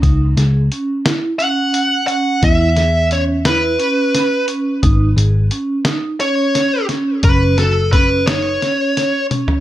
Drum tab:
HH |x-x-x-x-x-x-x-|x-x-x-x-x-x-x-|x-x-x-x-x-x-x-|x-x-x-x-x-x-x-|
SD |--o---o-------|--o---o---o---|------o---o-o-|--o-o-o-o-o---|
T1 |--------------|--------------|--------------|------------o-|
FT |--------------|--------------|--------------|-------------o|
BD |o-------------|o-------------|o-------------|o---o---------|